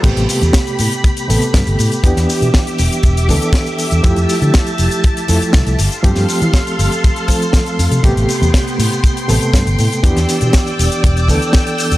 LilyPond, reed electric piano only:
\new Staff \with { instrumentName = "Reed electric piano" } { \time 4/4 \key a \minor \tempo 4 = 120 <c a b g'>2~ <c a b g'>8 <c a b a'>4. | <e b d' g'>2~ <e b d' g'>8 <e b d' a'>4. | <f a e' g'>2~ <f a e' g'>8 <f a e' a'>4 r8 | <f a c' g'>2~ <f a c' g'>8 <f a c' a'>4. |
<c a b g'>2~ <c a b g'>8 <c a b a'>4. | <e b d' g'>2~ <e b d' g'>8 <e b d' a'>4. | }